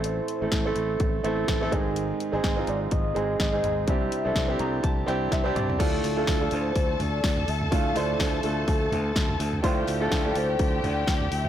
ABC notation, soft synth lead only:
X:1
M:4/4
L:1/8
Q:"Swing 16ths" 1/4=125
K:Dm
V:1 name="Soft synth lead"
c4 z4 | z3 d _e2 e2 | e3 z4 z | z3 c2 d2 e |
f d2 A4 z | z3 c2 d2 e |]